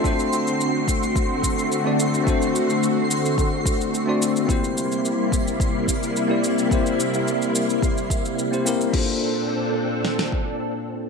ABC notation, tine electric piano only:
X:1
M:4/4
L:1/16
Q:1/4=108
K:Bblyd
V:1 name="Tine electric piano"
[A,CD^Fc]8- [A,CDFc]3 z2 [A,CDFd]3 | [A,CD^Fc]8- [A,CDFc]3 z2 [A,CDFd]3 | [B,CEGc]8- [B,CEGc]3 z2 [B,CEGd]3 | [B,CEGc]8- [B,CEGc]3 z2 [B,CEGc] [B,CEGB]2 |
[B,DFAc]16 |]